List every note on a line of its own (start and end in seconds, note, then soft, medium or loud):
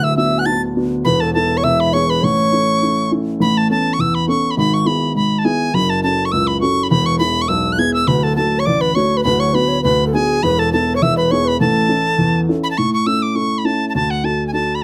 0.00 1.01 D1 medium
0.00 1.01 D2 medium
0.00 0.15 E5 medium
0.00 0.17 E6 medium
0.16 0.44 B3 medium
0.16 0.45 D4 medium
0.16 0.45 F#4 medium
0.16 0.39 E5 medium
0.16 0.41 E6 medium
0.38 0.47 F#5 loud
0.38 0.41 G#5 medium
0.38 0.47 F#6 medium
0.46 0.74 B3 soft
0.46 0.75 D4 soft
0.46 0.75 F#4 medium
0.46 0.62 A5 medium
0.46 0.61 A6 medium
0.76 1.04 B3 medium
0.76 1.04 D4 medium
0.76 1.05 F#4 medium
1.05 1.60 E1 medium
1.05 1.62 E2 medium
1.05 1.24 B4 medium
1.05 1.22 B5 loud
1.20 1.34 A4 medium
1.20 1.33 A5 medium
1.34 1.63 B3 medium
1.34 1.63 E4 medium
1.34 1.58 A4 medium
1.34 1.64 A4 medium
1.34 1.59 A5 loud
1.57 1.65 C#5 loud
1.57 1.65 C#6 medium
1.63 2.18 E1 medium
1.63 2.21 E2 medium
1.63 1.94 E5 loud
1.63 1.82 E6 loud
1.80 1.95 B5 loud
1.93 2.22 B3 medium
1.93 2.22 E4 soft
1.93 2.22 G#4 medium
1.93 2.07 C#5 medium
1.93 2.11 C#6 loud
2.08 2.23 B4 medium
2.08 2.26 B5 loud
2.21 3.36 A1 medium
2.21 3.37 A2 medium
2.21 3.10 C#5 medium
2.21 3.11 C#6 loud
2.52 2.80 C#4 soft
2.52 2.81 E4 soft
2.52 2.81 A4 medium
2.82 3.09 C#4 soft
2.82 3.10 E4 soft
2.82 3.10 A4 medium
3.11 3.39 C#4 medium
3.11 3.40 E4 soft
3.11 3.39 A4 medium
3.40 4.53 A1 medium
3.40 3.68 A2 medium
3.40 3.59 B5 medium
3.57 3.70 A5 medium
3.70 3.93 B3 medium
3.70 3.93 C#4 soft
3.70 3.93 A4 medium
3.70 3.95 A5 loud
3.93 4.02 C#6 medium
3.99 4.27 E2 medium
3.99 4.16 E6 medium
4.15 4.28 B5 medium
4.27 4.51 B3 medium
4.27 4.51 C#4 medium
4.27 4.51 A4 medium
4.27 4.52 C#6 medium
4.51 4.57 B5 medium
4.57 5.70 G#1 medium
4.57 4.86 G#2 medium
4.57 4.75 B5 loud
4.74 4.88 C#6 medium
4.85 5.09 B3 medium
4.85 5.09 E4 medium
4.85 5.10 G#4 medium
4.85 5.15 B5 medium
5.15 5.44 G#2 medium
5.15 5.40 B5 medium
5.39 5.46 A5 medium
5.44 5.68 B3 medium
5.44 5.68 E4 medium
5.44 5.68 G#4 medium
5.44 5.76 G#5 loud
5.74 6.87 F#1 medium
5.74 6.02 F#2 medium
5.74 5.91 B5 loud
5.90 6.03 A5 medium
6.03 6.27 C#4 medium
6.03 6.27 F#4 soft
6.03 6.28 A4 medium
6.03 6.27 A5 medium
6.25 6.33 C#6 medium
6.32 6.61 C#2 medium
6.32 6.49 E6 medium
6.47 6.60 B5 medium
6.61 6.85 C#4 medium
6.61 6.85 F#4 medium
6.61 6.86 A4 medium
6.61 6.85 C#6 loud
6.83 6.89 B5 medium
6.90 8.04 E1 medium
6.90 7.19 E2 medium
6.90 7.07 B5 loud
7.06 7.18 C#6 loud
7.19 7.43 B3 medium
7.19 7.44 E4 medium
7.19 7.44 G#4 medium
7.19 7.43 B5 loud
7.42 7.50 C#6 loud
7.48 7.78 B1 medium
7.48 7.74 E6 loud
7.72 7.80 F#6 medium
7.78 8.02 B3 medium
7.78 8.02 E4 soft
7.78 8.02 G#4 medium
7.78 7.93 G#6 loud
7.94 8.09 E6 loud
8.07 9.21 D1 medium
8.07 8.36 D2 medium
8.07 8.21 B4 medium
8.07 8.19 B5 loud
8.19 8.25 B4 soft
8.19 8.36 A5 medium
8.19 8.25 B5 medium
8.24 8.37 A4 medium
8.36 8.61 A3 medium
8.36 8.61 D4 soft
8.36 8.61 F#4 medium
8.36 8.60 A4 medium
8.36 8.61 A5 medium
8.58 8.68 C#5 medium
8.58 8.67 C#6 medium
8.65 8.95 A1 medium
8.65 8.83 D5 medium
8.65 8.82 D6 medium
8.81 8.94 B4 medium
8.81 8.97 B5 medium
8.95 9.19 A3 medium
8.95 9.19 D4 soft
8.95 9.20 F#4 medium
8.95 9.18 C#5 medium
8.95 9.19 C#6 medium
9.17 9.25 B4 medium
9.17 9.23 B5 medium
9.23 10.38 D1 medium
9.23 9.54 D2 medium
9.23 9.41 B4 medium
9.23 9.41 B5 loud
9.39 9.54 C#5 medium
9.39 9.56 C#6 loud
9.53 9.77 B3 medium
9.53 9.78 D4 soft
9.53 9.78 F#4 medium
9.53 9.69 B4 medium
9.53 9.83 B5 loud
9.68 9.81 C#5 medium
9.81 10.13 D2 medium
9.81 10.04 B4 medium
9.81 10.05 B5 medium
10.06 10.15 A4 medium
10.13 10.37 B3 medium
10.13 10.37 D4 medium
10.13 10.37 F#4 medium
10.13 10.43 G#4 medium
10.13 10.44 G#5 medium
10.43 10.98 E1 medium
10.43 10.71 E2 medium
10.43 10.59 B4 medium
10.43 10.61 B5 loud
10.58 10.72 A4 medium
10.58 10.72 A5 loud
10.72 10.96 B3 medium
10.72 10.96 E4 soft
10.72 10.96 A4 medium
10.72 10.93 A5 medium
10.95 11.04 C#5 loud
10.95 11.04 C#6 medium
11.02 11.56 E1 medium
11.02 11.30 E2 medium
11.02 11.19 E5 medium
11.02 11.17 E6 loud
11.17 11.32 B4 medium
11.17 11.33 B5 medium
11.30 11.54 B3 medium
11.30 11.55 E4 medium
11.30 11.55 G#4 medium
11.30 11.46 C#5 medium
11.30 11.49 C#6 loud
11.45 11.59 B4 medium
11.45 11.60 B5 loud
11.59 12.73 A1 medium
11.59 11.89 A2 medium
11.59 12.59 A4 medium
11.59 12.40 A5 loud
11.88 12.12 C#4 medium
11.88 12.12 E4 medium
11.88 12.13 A4 medium
12.18 12.47 E2 medium
12.48 12.71 C#4 medium
12.48 12.72 E4 soft
12.48 12.72 A4 medium
12.63 12.70 B5 loud
12.71 12.79 A5 medium
12.78 13.91 A2 medium
12.78 12.93 C#6 medium
12.94 13.08 C#6 medium
13.06 13.33 C#4 soft
13.06 13.34 E4 soft
13.06 13.34 A4 medium
13.06 13.24 E6 loud
13.22 13.37 D6 medium
13.35 13.63 C#4 soft
13.35 13.63 E4 soft
13.35 13.63 A4 soft
13.35 13.60 C#6 loud
13.58 13.67 B5 medium
13.64 13.93 C#4 medium
13.64 13.93 E4 soft
13.64 13.93 A4 soft
13.64 13.88 A5 medium
13.89 13.95 A5 medium
13.95 14.84 D2 medium
13.95 14.12 A5 loud
14.11 14.26 F#5 medium
14.23 14.51 D4 soft
14.23 14.52 F#4 soft
14.23 14.52 A4 medium
14.23 14.46 A5 loud
14.47 14.53 G#5 medium
14.53 14.81 D4 soft
14.53 14.81 F#4 soft
14.53 14.82 A4 medium
14.53 14.77 A5 medium
14.75 14.83 B5 medium